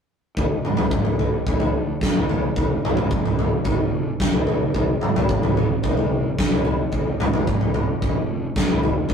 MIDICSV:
0, 0, Header, 1, 3, 480
1, 0, Start_track
1, 0, Tempo, 544959
1, 328, Time_signature, 4, 2, 24, 8
1, 8050, End_track
2, 0, Start_track
2, 0, Title_t, "Fingered electric bass"
2, 0, Program_c, 0, 33
2, 328, Note_on_c, 0, 38, 75
2, 524, Note_off_c, 0, 38, 0
2, 548, Note_on_c, 0, 38, 68
2, 753, Note_off_c, 0, 38, 0
2, 805, Note_on_c, 0, 38, 75
2, 1003, Note_off_c, 0, 38, 0
2, 1037, Note_on_c, 0, 38, 68
2, 1238, Note_off_c, 0, 38, 0
2, 1292, Note_on_c, 0, 38, 69
2, 1684, Note_off_c, 0, 38, 0
2, 1777, Note_on_c, 0, 40, 79
2, 2167, Note_off_c, 0, 40, 0
2, 2253, Note_on_c, 0, 29, 84
2, 2449, Note_off_c, 0, 29, 0
2, 2483, Note_on_c, 0, 29, 75
2, 2684, Note_off_c, 0, 29, 0
2, 2735, Note_on_c, 0, 29, 66
2, 2931, Note_off_c, 0, 29, 0
2, 2974, Note_on_c, 0, 29, 57
2, 3171, Note_off_c, 0, 29, 0
2, 3219, Note_on_c, 0, 29, 67
2, 3609, Note_off_c, 0, 29, 0
2, 3696, Note_on_c, 0, 29, 71
2, 3892, Note_off_c, 0, 29, 0
2, 3930, Note_on_c, 0, 35, 66
2, 4128, Note_off_c, 0, 35, 0
2, 4180, Note_on_c, 0, 36, 93
2, 4375, Note_off_c, 0, 36, 0
2, 4418, Note_on_c, 0, 36, 71
2, 4614, Note_off_c, 0, 36, 0
2, 4660, Note_on_c, 0, 36, 73
2, 4855, Note_off_c, 0, 36, 0
2, 4880, Note_on_c, 0, 36, 72
2, 5083, Note_off_c, 0, 36, 0
2, 5142, Note_on_c, 0, 36, 71
2, 5531, Note_off_c, 0, 36, 0
2, 5627, Note_on_c, 0, 36, 84
2, 6014, Note_off_c, 0, 36, 0
2, 6095, Note_on_c, 0, 29, 84
2, 6291, Note_off_c, 0, 29, 0
2, 6325, Note_on_c, 0, 29, 76
2, 6525, Note_off_c, 0, 29, 0
2, 6586, Note_on_c, 0, 29, 77
2, 6777, Note_off_c, 0, 29, 0
2, 6811, Note_on_c, 0, 29, 68
2, 7007, Note_off_c, 0, 29, 0
2, 7063, Note_on_c, 0, 29, 77
2, 7448, Note_off_c, 0, 29, 0
2, 7539, Note_on_c, 0, 29, 80
2, 7731, Note_off_c, 0, 29, 0
2, 7774, Note_on_c, 0, 29, 71
2, 7967, Note_off_c, 0, 29, 0
2, 8016, Note_on_c, 0, 38, 96
2, 8050, Note_off_c, 0, 38, 0
2, 8050, End_track
3, 0, Start_track
3, 0, Title_t, "Drums"
3, 325, Note_on_c, 9, 36, 67
3, 328, Note_on_c, 9, 43, 56
3, 413, Note_off_c, 9, 36, 0
3, 416, Note_off_c, 9, 43, 0
3, 570, Note_on_c, 9, 47, 66
3, 659, Note_off_c, 9, 47, 0
3, 678, Note_on_c, 9, 43, 75
3, 678, Note_on_c, 9, 47, 65
3, 766, Note_off_c, 9, 43, 0
3, 766, Note_off_c, 9, 47, 0
3, 801, Note_on_c, 9, 47, 61
3, 805, Note_on_c, 9, 36, 94
3, 889, Note_off_c, 9, 47, 0
3, 893, Note_off_c, 9, 36, 0
3, 923, Note_on_c, 9, 43, 62
3, 1012, Note_off_c, 9, 43, 0
3, 1050, Note_on_c, 9, 43, 68
3, 1138, Note_off_c, 9, 43, 0
3, 1291, Note_on_c, 9, 36, 82
3, 1291, Note_on_c, 9, 43, 66
3, 1379, Note_off_c, 9, 36, 0
3, 1379, Note_off_c, 9, 43, 0
3, 1409, Note_on_c, 9, 43, 68
3, 1497, Note_off_c, 9, 43, 0
3, 1774, Note_on_c, 9, 36, 90
3, 1783, Note_on_c, 9, 38, 64
3, 1862, Note_off_c, 9, 36, 0
3, 1872, Note_off_c, 9, 38, 0
3, 1899, Note_on_c, 9, 43, 60
3, 1987, Note_off_c, 9, 43, 0
3, 2020, Note_on_c, 9, 43, 67
3, 2108, Note_off_c, 9, 43, 0
3, 2258, Note_on_c, 9, 36, 78
3, 2261, Note_on_c, 9, 43, 65
3, 2346, Note_off_c, 9, 36, 0
3, 2349, Note_off_c, 9, 43, 0
3, 2509, Note_on_c, 9, 43, 71
3, 2509, Note_on_c, 9, 47, 63
3, 2598, Note_off_c, 9, 43, 0
3, 2598, Note_off_c, 9, 47, 0
3, 2615, Note_on_c, 9, 43, 74
3, 2615, Note_on_c, 9, 47, 71
3, 2703, Note_off_c, 9, 43, 0
3, 2703, Note_off_c, 9, 47, 0
3, 2738, Note_on_c, 9, 36, 92
3, 2744, Note_on_c, 9, 47, 54
3, 2826, Note_off_c, 9, 36, 0
3, 2832, Note_off_c, 9, 47, 0
3, 2867, Note_on_c, 9, 43, 69
3, 2955, Note_off_c, 9, 43, 0
3, 2984, Note_on_c, 9, 43, 61
3, 2984, Note_on_c, 9, 47, 52
3, 3072, Note_off_c, 9, 43, 0
3, 3072, Note_off_c, 9, 47, 0
3, 3211, Note_on_c, 9, 43, 59
3, 3217, Note_on_c, 9, 36, 91
3, 3299, Note_off_c, 9, 43, 0
3, 3305, Note_off_c, 9, 36, 0
3, 3699, Note_on_c, 9, 36, 84
3, 3703, Note_on_c, 9, 38, 63
3, 3788, Note_off_c, 9, 36, 0
3, 3791, Note_off_c, 9, 38, 0
3, 3815, Note_on_c, 9, 43, 67
3, 3903, Note_off_c, 9, 43, 0
3, 3936, Note_on_c, 9, 43, 62
3, 4024, Note_off_c, 9, 43, 0
3, 4177, Note_on_c, 9, 43, 60
3, 4180, Note_on_c, 9, 36, 67
3, 4265, Note_off_c, 9, 43, 0
3, 4268, Note_off_c, 9, 36, 0
3, 4416, Note_on_c, 9, 47, 71
3, 4504, Note_off_c, 9, 47, 0
3, 4547, Note_on_c, 9, 43, 81
3, 4547, Note_on_c, 9, 47, 69
3, 4635, Note_off_c, 9, 43, 0
3, 4635, Note_off_c, 9, 47, 0
3, 4660, Note_on_c, 9, 36, 85
3, 4663, Note_on_c, 9, 47, 63
3, 4748, Note_off_c, 9, 36, 0
3, 4751, Note_off_c, 9, 47, 0
3, 4784, Note_on_c, 9, 43, 72
3, 4872, Note_off_c, 9, 43, 0
3, 4907, Note_on_c, 9, 43, 65
3, 4995, Note_off_c, 9, 43, 0
3, 5137, Note_on_c, 9, 43, 65
3, 5142, Note_on_c, 9, 36, 83
3, 5225, Note_off_c, 9, 43, 0
3, 5230, Note_off_c, 9, 36, 0
3, 5260, Note_on_c, 9, 43, 58
3, 5348, Note_off_c, 9, 43, 0
3, 5624, Note_on_c, 9, 36, 92
3, 5629, Note_on_c, 9, 38, 71
3, 5712, Note_off_c, 9, 36, 0
3, 5717, Note_off_c, 9, 38, 0
3, 5741, Note_on_c, 9, 43, 67
3, 5829, Note_off_c, 9, 43, 0
3, 5856, Note_on_c, 9, 43, 68
3, 5944, Note_off_c, 9, 43, 0
3, 6094, Note_on_c, 9, 43, 53
3, 6100, Note_on_c, 9, 36, 75
3, 6182, Note_off_c, 9, 43, 0
3, 6188, Note_off_c, 9, 36, 0
3, 6343, Note_on_c, 9, 43, 77
3, 6343, Note_on_c, 9, 47, 75
3, 6431, Note_off_c, 9, 43, 0
3, 6431, Note_off_c, 9, 47, 0
3, 6461, Note_on_c, 9, 43, 77
3, 6461, Note_on_c, 9, 47, 70
3, 6549, Note_off_c, 9, 43, 0
3, 6549, Note_off_c, 9, 47, 0
3, 6582, Note_on_c, 9, 36, 89
3, 6582, Note_on_c, 9, 47, 60
3, 6670, Note_off_c, 9, 36, 0
3, 6670, Note_off_c, 9, 47, 0
3, 6703, Note_on_c, 9, 43, 63
3, 6791, Note_off_c, 9, 43, 0
3, 6820, Note_on_c, 9, 43, 65
3, 6820, Note_on_c, 9, 47, 54
3, 6908, Note_off_c, 9, 43, 0
3, 6908, Note_off_c, 9, 47, 0
3, 7066, Note_on_c, 9, 36, 85
3, 7068, Note_on_c, 9, 43, 62
3, 7154, Note_off_c, 9, 36, 0
3, 7156, Note_off_c, 9, 43, 0
3, 7540, Note_on_c, 9, 36, 101
3, 7547, Note_on_c, 9, 38, 69
3, 7628, Note_off_c, 9, 36, 0
3, 7635, Note_off_c, 9, 38, 0
3, 7665, Note_on_c, 9, 43, 65
3, 7753, Note_off_c, 9, 43, 0
3, 7781, Note_on_c, 9, 43, 63
3, 7869, Note_off_c, 9, 43, 0
3, 8004, Note_on_c, 9, 43, 64
3, 8014, Note_on_c, 9, 36, 80
3, 8050, Note_off_c, 9, 36, 0
3, 8050, Note_off_c, 9, 43, 0
3, 8050, End_track
0, 0, End_of_file